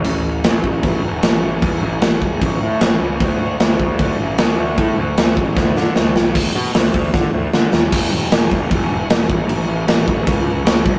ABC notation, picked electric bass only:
X:1
M:4/4
L:1/8
Q:1/4=153
K:Dlyd
V:1 name="Picked electric bass" clef=bass
A,,,2 A,,, A,,, A,,, E,,, A,,, A,,, | E,, A,,, A,,, E,,, A,,, A,, A,,, C,, | D,,2 D,, D,, D,, A,,, D,, D,, | A,, D,, D,, A,,, D,, D, D,, B,,, |
D,, B,, D,, D,, D, D,, D, ^D,, | [K:A] E,,, E,,, E,,, E,,, E,,, E,,, E,,, A,,, | A,,, A,,, A,,, A,,, C,,2 C,, =C,, |]